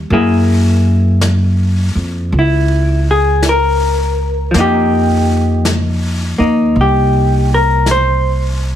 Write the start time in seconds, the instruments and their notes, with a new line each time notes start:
Already playing: hollow-body jazz guitar G3 A#3
0.10 upright bass F#2, hollow-body jazz guitar A#3 E4 G#4, brush sweep
1.21 brush sweep, snare, hi-hat pedal
1.95 upright bass F2
2.31 upright bass C#2, brush sweep
2.39 hollow-body jazz guitar E4
3.11 hollow-body jazz guitar G#4
3.43 brush sweep, snare, hi-hat pedal
3.49 hollow-body jazz guitar A#4
4.51 upright bass F2, hollow-body jazz guitar F3, brush sweep, snare
4.55 hollow-body jazz guitar A#3 D#4
4.60 hollow-body jazz guitar G4
5.65 brush sweep, snare, hi-hat pedal
6.38 upright bass D#2, hollow-body jazz guitar A#3 D#4
6.75 upright bass C2, brush sweep
6.81 hollow-body jazz guitar G4
7.54 hollow-body jazz guitar A#4
7.86 brush sweep, snare, hi-hat pedal
7.91 hollow-body jazz guitar C5